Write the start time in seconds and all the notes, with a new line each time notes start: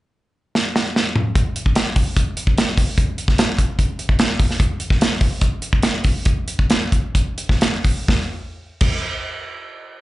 0.55 snare
0.76 snare
0.96 snare
1.16 mid tom
1.35 kick, closed hi-hat
1.56 closed hi-hat
1.66 kick
1.75 snare, closed hi-hat
1.96 kick, open hi-hat
2.17 kick, closed hi-hat
2.37 closed hi-hat
2.47 kick
2.58 snare, closed hi-hat
2.78 kick, open hi-hat
2.98 kick, closed hi-hat
3.18 closed hi-hat
3.28 kick, snare
3.38 snare, closed hi-hat
3.58 kick, closed hi-hat
3.79 kick, closed hi-hat
3.99 closed hi-hat
4.09 kick
4.19 snare, closed hi-hat
4.40 kick, open hi-hat
4.51 snare
4.60 kick, closed hi-hat
4.80 closed hi-hat
4.90 kick, snare
5.01 snare, closed hi-hat
5.21 kick, open hi-hat
5.41 kick, closed hi-hat
5.62 closed hi-hat
5.73 kick
5.83 snare, closed hi-hat
6.04 kick, open hi-hat
6.25 kick, closed hi-hat
6.48 closed hi-hat
6.59 kick
6.70 snare, closed hi-hat
6.92 kick, closed hi-hat
7.15 kick, closed hi-hat
7.38 closed hi-hat
7.49 kick, snare
7.61 snare, closed hi-hat
7.85 kick, open hi-hat
8.08 kick, snare
8.81 kick, crash